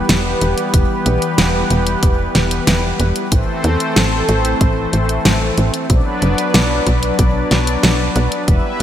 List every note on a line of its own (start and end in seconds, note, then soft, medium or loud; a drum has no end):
0.00 3.28 E3 medium
0.00 3.28 G3 medium
0.00 3.28 B3 medium
0.00 3.28 G4 medium
0.00 3.28 B4 medium
0.09 0.35 E1 medium
0.09 snare loud
0.09 closed hi-hat medium
0.41 0.55 E1 loud
0.41 closed hi-hat medium
0.58 closed hi-hat medium
0.74 0.87 E1 loud
0.74 kick loud
0.74 closed hi-hat medium
1.06 1.19 B1 loud
1.06 closed hi-hat medium
1.22 closed hi-hat medium
1.38 1.64 E1 medium
1.38 snare loud
1.38 closed hi-hat medium
1.70 1.97 E1 loud
1.70 closed hi-hat medium
1.87 closed hi-hat medium
2.03 2.29 E1 medium
2.03 kick loud
2.03 closed hi-hat loud
2.35 2.61 E1 medium
2.35 snare medium
2.35 closed hi-hat medium
2.51 closed hi-hat medium
2.67 2.93 E1 medium
2.67 snare loud
2.67 closed hi-hat loud
3.00 3.13 E1 loud
3.00 closed hi-hat medium
3.16 closed hi-hat medium
3.32 3.45 A1 medium
3.32 5.87 E3 medium
3.32 5.87 A3 medium
3.32 5.87 C4 medium
3.32 5.87 A4 medium
3.32 5.87 C5 medium
3.32 kick loud
3.32 closed hi-hat medium
3.64 3.77 E2 loud
3.64 closed hi-hat medium
3.80 closed hi-hat medium
3.96 4.22 A1 medium
3.96 snare loud
3.96 closed hi-hat medium
4.29 4.55 A1 loud
4.29 closed hi-hat medium
4.45 closed hi-hat medium
4.61 4.87 A1 medium
4.61 kick loud
4.61 closed hi-hat medium
4.93 5.19 A1 medium
4.93 closed hi-hat medium
5.09 closed hi-hat medium
5.25 5.51 A1 medium
5.25 snare loud
5.25 closed hi-hat medium
5.58 5.71 A1 loud
5.58 closed hi-hat medium
5.74 closed hi-hat medium
5.90 6.03 B1 medium
5.90 8.45 F#3 medium
5.90 8.83 B3 medium
5.90 8.45 D4 medium
5.90 8.45 B4 medium
5.90 8.45 D5 medium
5.90 kick loud
5.90 closed hi-hat medium
6.22 6.35 F#1 loud
6.22 closed hi-hat medium
6.38 closed hi-hat medium
6.54 6.80 B1 medium
6.54 snare loud
6.54 closed hi-hat medium
6.87 7.13 B1 loud
6.87 kick medium
6.87 closed hi-hat medium
7.03 closed hi-hat medium
7.19 7.45 B1 medium
7.19 kick loud
7.19 closed hi-hat medium
7.51 7.77 B1 medium
7.51 snare medium
7.51 closed hi-hat medium
7.67 closed hi-hat medium
7.83 8.09 B1 medium
7.83 snare loud
7.83 closed hi-hat medium
8.16 8.29 B1 loud
8.16 closed hi-hat medium
8.32 closed hi-hat medium
8.48 8.61 E1 medium
8.48 8.83 G3 medium
8.48 8.83 E4 medium
8.48 8.83 B4 medium
8.48 8.83 E5 medium
8.48 kick loud
8.48 closed hi-hat medium